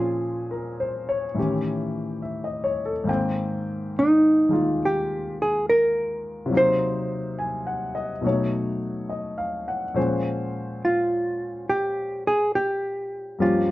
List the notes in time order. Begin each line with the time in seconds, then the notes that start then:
Already playing: A#2 F3 C4 C#4 F4 G#4
0.51 A#4
0.80 C5
1.09 C#5
1.34 A2 D#3 E3 C#4
1.39 G4
2.22 E5
2.44 D#5
2.64 C#5
2.85 A4
3.04 G#2 D#3 A#3
3.08 C4 G5
3.99 D#4
4.49 D#3 G#3 A#3
4.53 F4
4.85 G4
5.42 G#4
5.70 A#4
6.46 C3 F#3
6.52 A#3 D#4
6.57 C5
7.39 G#5
7.67 F#5
7.95 D#5
8.21 B2 F#3 A3 D#4
8.27 C#5
9.09 D#5
9.38 F5
9.68 F#5
9.94 A#2 F3 G#3 C#4 C5
10.85 F4
11.69 G4
12.27 G#4
12.55 G4
13.39 G2 F3 A#3 C#4 F4 G4